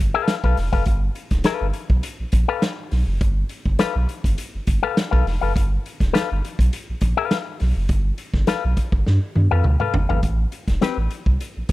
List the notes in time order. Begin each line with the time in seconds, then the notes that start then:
0.00 G1
0.14 A4 B4 F5
0.28 snare, closed hi-hat
0.44 B1 A4 B4 F5, kick
0.57 F1, snare, open hi-hat
0.73 F#1 A4 B4 F5, kick
0.85 G1, kick, closed hi-hat
1.15 closed hi-hat
1.31 D1, kick, snare, closed hi-hat
1.44 A4 B4 F5, snare, closed hi-hat
1.61 G1
1.73 closed hi-hat
1.89 B1, kick
2.03 closed hi-hat
2.20 A#1
2.32 A#1, kick, closed hi-hat
2.48 A4 B4 F5
2.62 snare, closed hi-hat
2.91 B1, snare, open hi-hat
3.07 F#1
3.21 G1, kick, closed hi-hat
3.49 closed hi-hat
3.66 G1, kick
3.79 A4 B4 F5, snare, closed hi-hat
3.96 B1
4.09 closed hi-hat
4.24 G1, kick, closed hi-hat
4.38 closed hi-hat
4.55 G1
4.67 G1, kick, closed hi-hat
4.83 A4 B4 F5
4.97 snare, closed hi-hat
5.11 B1 A4 B4 F5, kick
5.26 F1, snare, open hi-hat
5.41 F#1 A4 B4 F5
5.56 G1, kick, closed hi-hat
5.86 closed hi-hat
6.00 D1, kick, snare, closed hi-hat
6.13 A4 B4 F5, snare, closed hi-hat
6.32 G1
6.45 closed hi-hat
6.59 B1, kick, closed hi-hat
6.73 closed hi-hat
6.89 A#1
7.01 A#1, kick, closed hi-hat
7.17 A4 B4 F5
7.31 snare, closed hi-hat
7.60 B1, snare, open hi-hat
7.77 F#1
7.89 G1, kick, closed hi-hat
8.18 closed hi-hat
8.34 G1, kick, snare
8.47 A4 B4 F5, snare, closed hi-hat
8.65 B1
8.77 kick, closed hi-hat
8.92 G1, kick
9.06 G2, snare
9.35 G2, high tom
9.51 F2 A4 B4 F5
9.64 D2, mid tom
9.80 A4 B4 F5, mid tom
9.94 G1, floor tom
10.09 G#1 A4 B4 F5, floor tom
10.23 A1, kick, closed hi-hat
10.52 closed hi-hat
10.68 E1, kick, snare, closed hi-hat
10.81 C4 G4 B4, snare, closed hi-hat
10.97 A1
11.10 closed hi-hat
11.26 C2, kick
11.40 closed hi-hat
11.57 A#1
11.69 kick, closed hi-hat